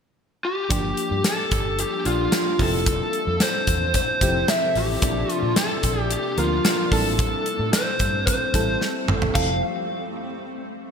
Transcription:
0.45 G4
0.69 G1 F3 G3 A#3 D4 F4 G4, kick, closed hi-hat
0.97 closed hi-hat
1.11 G2
1.24 A4, snare, closed hi-hat
1.51 G1, kick, closed hi-hat
1.79 G4, closed hi-hat
2.05 A#1 F3 A#3 D4 F4 G4, closed hi-hat
2.32 snare, closed hi-hat
2.58 F1 C3 F3 C4 E4 G4 A4, kick, open hi-hat
2.66 A4
2.86 kick, closed hi-hat
3.13 closed hi-hat
3.27 F2
3.40 C5, snare, closed hi-hat
3.67 E2, kick, closed hi-hat
3.94 C5, kick, closed hi-hat
4.21 F1 F3 C4 E4 G4, kick, closed hi-hat
4.48 E5, snare, closed hi-hat
4.75 A1 G4, open hi-hat
5.02 A#1 F3 A#3 D4 D5, kick, closed hi-hat
5.30 F4, closed hi-hat
5.43 A#2
5.56 A4, snare, closed hi-hat
5.83 A#1, kick, closed hi-hat
6.02 G4
6.11 G4, closed hi-hat
6.37 D2 F3 A#3 C4 F4 A#4, closed hi-hat
6.44 D4
6.65 snare, closed hi-hat
6.91 A1 G3 A3 C4 E4 A4, kick, open hi-hat
7.19 kick, closed hi-hat
7.46 closed hi-hat
7.59 A2
7.73 C5, snare, closed hi-hat
7.99 G2, kick, closed hi-hat
8.27 C5, kick, closed hi-hat
8.54 A1 G3 C4 E4 A4, kick, closed hi-hat
8.81 snare
9.08 G1, mid tom
9.22 floor tom
9.35 F1 F3 C4 E4 A4 F5, kick, crash

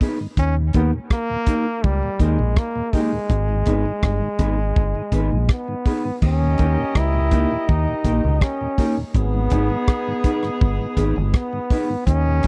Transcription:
0.01 B3 D#4 G#4 B4, kick, open hi-hat
0.20 G#2 D#3
0.37 D#2 C#4, kick, hi-hat pedal
0.57 D#2 A#2
0.73 D#2 A#3 B3 D#4 G4 A#4, kick, closed hi-hat
0.93 D#2 A#2
1.10 A#3, kick, cross-stick
1.30 D#2 A#2
1.46 A#3 D#4 G4 A#4, kick, closed hi-hat
1.67 muted clean electric guitar stroke
1.84 C#2 G3, kick
2.03 D#2 A#2
2.19 D#2 G#3 A#3 D#4 G4 A#4, kick, closed hi-hat
2.39 A#1 D#2 A#2
2.56 A#3, kick, cross-stick
2.75 D#2 A#2
2.93 G#3 A#3 D#4 G4 A#4, kick, open hi-hat
3.12 D#2 A#2
3.30 G#1, kick, hi-hat pedal
3.49 G#2 D#3
3.66 G#1 B3 D#4 G#4 B4, kick, closed hi-hat
3.86 G#2 D#3
4.03 G1, kick, cross-stick
4.22 G#2 D#3
4.39 G#1 B3 D#4 G#4 B4, kick, closed hi-hat
4.58 muted clean electric guitar stroke
4.76 G1, kick
4.95 G#2 D#3
5.12 G#1 B3 D#4 G#4 B4, kick, closed hi-hat
5.32 A#1 G#2 D#3
5.49 B3, kick, cross-stick
5.68 G#2 D#3
5.85 B3 D#4 G#4 B4, kick, open hi-hat
6.05 G#2 D#3
6.22 D#2 C#4 G4 A#4 D#5, kick, crash
6.42 D#2 A#2
6.58 D#2 A#3 D#4 G4 A#4, kick, closed hi-hat
6.79 D#2 A#2
6.95 C#2 E4, kick, cross-stick
7.14 D#2 A#2
7.31 A#3 D#4 G4 A#4, kick, closed hi-hat
7.51 D#2 A#2
7.69 D#2 D#4, kick
7.88 D#2 A#2
8.04 A#1 A#3 D#4 G4 A#4, kick, closed hi-hat
8.24 C#2 D#2 A#2
8.41 C#4, kick, cross-stick
8.61 D#2 A#2
8.78 A#3 D#4 G4 A#4, kick, open hi-hat
8.97 D#2 A#2
9.14 G#1 B3 D#4 G#4, kick, hi-hat pedal
9.34 G#2 D#3
9.50 G#1 B3 D#4 G#4 B4, kick, closed hi-hat
9.70 G#2 D#3
9.88 kick, cross-stick
10.07 G#2 D#3
10.24 B3 D#4 G#4 B4, kick, closed hi-hat
10.43 G#2 D#3, cross-stick
10.61 G1, kick
10.80 G#2 D#3
10.97 G#1 B3 D#4 G#4 B4, kick, closed hi-hat
11.16 G1 G#2 D#3
11.34 B3, kick, cross-stick
11.53 G#2 D#3
11.70 B3 D#4 G#4 B4, kick, open hi-hat
11.90 G#2 D#3
12.06 D#2 C#4 G4 A#4 D#5, kick, hi-hat pedal
12.26 D#2 A#2
12.43 A#3, kick, closed hi-hat

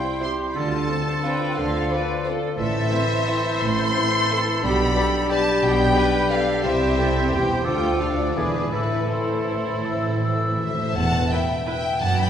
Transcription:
Already playing: C3 G3 C4 E4 G4 C5 E5 G5 C6
0.04 C5
0.20 C4 E4 G4 C5 E5 C6
0.39 G4
0.50 B5
0.55 D2 D3 D4 F4 A4 A5 C6
0.73 C4
0.88 C4 F4 A4 C5 D5
1.07 C5
1.23 F3 C4 F4 B4 C5 D5 G5
1.41 F4
1.56 D2 D3 A4 F5
1.73 C4
1.90 C4 F4 B4 C5 D5
2.08 C5
2.24 C4 F4 A4 C5 D5
2.42 F4
2.57 A1 A2 E3 E4 A4 E5 C6
2.74 C4
2.91 C4 E4 C5 E5
3.10 C5
3.27 C4 E4 C5 E5
3.44 E4
3.60 A1 A2 C6
3.77 C4
3.95 C4 E4 C5 E5
4.12 C5
4.30 C4 E4 A4 C5 E5
4.47 E4
4.62 B1 B2 G3 D4 G4 B5
4.79 D4
4.96 B3 G4 D5
5.13 G4
5.30 B3 G4 D5 A5
5.46 G4
5.62 B1 B2 G5
5.79 D4
5.95 B3 G4 B4 D5
6.13 G4
6.29 B3 G4 A4 D5 F5
6.47 G4
6.63 C2 C3 G3 C4 E4 G4 C5 E5 C6
6.80 E4
6.97 A4 C5
7.16 E5
7.32 E1 E2 C4 G4 C5 G5
7.50 G4
7.65 D2 D3 F3 A3 D4 F4 A4 G5 D6
7.82 D4
8.00 A3 D4 F4 A4 F5
8.18 D5
8.36 E1 E2 E3 G#3 D4 E4 G#4 B4
8.54 E4 G#4
8.72 A1 A2 E3 A3 E4 A4 B4 E6
8.80 A2
8.89 A2 C4
8.96 A2
9.05 A2 E4 A4
9.09 A2 A3 E4 A4 C5 C6
9.22 A2
9.28 A2 C5
9.38 A2
9.45 A2 A4
9.54 A2
9.63 A2
9.67 A2 E4
9.78 A2
9.84 A2 E6
9.93 A2
10.01 A2 C4
10.08 A2
10.17 A2 A4
10.22 E6
10.26 A2
10.34 A2
10.40 A2 C5
10.50 A2
10.57 A2 A4 C5 E5
10.65 A2
10.73 A2 E4
10.80 A2
10.93 E1 E2 F#5 A5
11.02 B2
11.10 E4
11.20 B4
11.30 E4 B4 E5 G5
11.40 E5
11.49 B5
11.58 E5
11.65 E4 B4 E5 G5
11.75 E4
11.84 B3
11.93 B2
12.00 F#1 F#2 F#5 A5
12.10 F#3
12.17 D#4 G5 B5
12.27 A4

